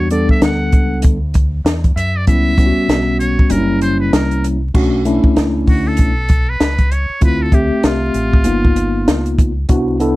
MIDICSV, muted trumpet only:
0, 0, Header, 1, 2, 480
1, 0, Start_track
1, 0, Key_signature, 2, "minor"
1, 0, Tempo, 618557
1, 1763, Time_signature, 4, 2, 24, 8
1, 7884, End_track
2, 0, Start_track
2, 0, Title_t, "Muted trumpet"
2, 0, Program_c, 0, 59
2, 0, Note_on_c, 0, 73, 98
2, 82, Note_off_c, 0, 73, 0
2, 87, Note_on_c, 0, 74, 71
2, 220, Note_off_c, 0, 74, 0
2, 238, Note_on_c, 0, 76, 91
2, 322, Note_off_c, 0, 76, 0
2, 338, Note_on_c, 0, 78, 89
2, 779, Note_off_c, 0, 78, 0
2, 1533, Note_on_c, 0, 76, 107
2, 1682, Note_on_c, 0, 74, 90
2, 1693, Note_off_c, 0, 76, 0
2, 1763, Note_off_c, 0, 74, 0
2, 1767, Note_on_c, 0, 76, 110
2, 2454, Note_off_c, 0, 76, 0
2, 2477, Note_on_c, 0, 73, 94
2, 2723, Note_on_c, 0, 70, 86
2, 2735, Note_off_c, 0, 73, 0
2, 2959, Note_off_c, 0, 70, 0
2, 2964, Note_on_c, 0, 72, 91
2, 3098, Note_off_c, 0, 72, 0
2, 3106, Note_on_c, 0, 71, 74
2, 3207, Note_on_c, 0, 70, 80
2, 3218, Note_off_c, 0, 71, 0
2, 3445, Note_off_c, 0, 70, 0
2, 4414, Note_on_c, 0, 66, 89
2, 4560, Note_on_c, 0, 69, 97
2, 4572, Note_off_c, 0, 66, 0
2, 5040, Note_on_c, 0, 71, 84
2, 5051, Note_off_c, 0, 69, 0
2, 5375, Note_on_c, 0, 73, 94
2, 5386, Note_off_c, 0, 71, 0
2, 5609, Note_off_c, 0, 73, 0
2, 5616, Note_on_c, 0, 71, 99
2, 5761, Note_on_c, 0, 69, 89
2, 5773, Note_off_c, 0, 71, 0
2, 5855, Note_on_c, 0, 67, 76
2, 5866, Note_off_c, 0, 69, 0
2, 6093, Note_on_c, 0, 65, 80
2, 6105, Note_off_c, 0, 67, 0
2, 7288, Note_off_c, 0, 65, 0
2, 7884, End_track
0, 0, End_of_file